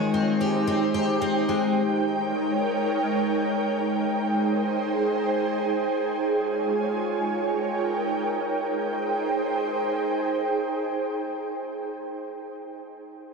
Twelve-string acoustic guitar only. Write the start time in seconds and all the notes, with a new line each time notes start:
Already playing: D#3 G#3
0.14 C4
0.41 G4
0.67 C4
0.94 G4
1.22 C4
1.49 G#3